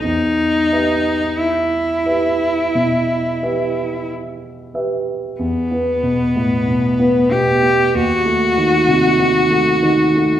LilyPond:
<<
  \new Staff \with { instrumentName = "Cello" } { \time 4/4 \key e \minor \tempo 4 = 46 dis'4 e'2 r4 | b4. g'8 fis'2 | }
  \new Staff \with { instrumentName = "Grand piano" } { \time 4/4 \key e \minor e,8 <g' b' e''>4 <g' b' e''>8 b,8 <g' b' e''>4 <g' b' e''>8 | e,16 b16 b,16 a,16 b,16 b16 b,16 b16 dis,16 a16 dis16 bis,16 dis16 a16 dis16 a16 | }
>>